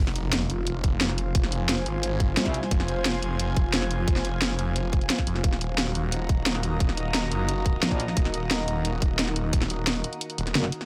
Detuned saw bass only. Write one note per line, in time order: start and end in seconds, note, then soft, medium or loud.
0.00 0.48 F1 loud
0.50 0.82 F1 loud
0.84 1.34 F1 loud
1.35 1.85 F1 loud
1.86 2.36 G#1 loud
2.71 3.21 F1 loud
3.22 3.55 F1 loud
3.57 4.06 F1 loud
4.08 4.57 F1 loud
4.59 5.09 F1 medium
5.27 5.43 F1 medium
5.44 5.94 D#1 loud
5.95 6.28 D#1 loud
6.29 6.79 D#1 loud
6.80 7.30 D#1 loud
7.32 7.81 F#1 loud
8.17 8.67 D#1 loud
8.68 9.01 D#1 loud
9.02 9.52 D#1 loud
9.53 10.03 D#1 loud
10.38 10.54 D#1 loud